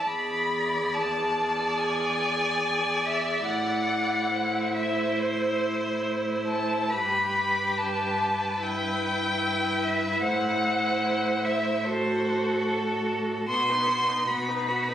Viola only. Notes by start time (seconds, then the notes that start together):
0.07 G#4
3.48 E4
6.92 G4
8.63 E4
11.85 F#4
13.49 B3
13.69 D#4
13.87 B3
14.08 D#4
14.27 B3
14.48 D#4
14.67 B3
14.88 D#4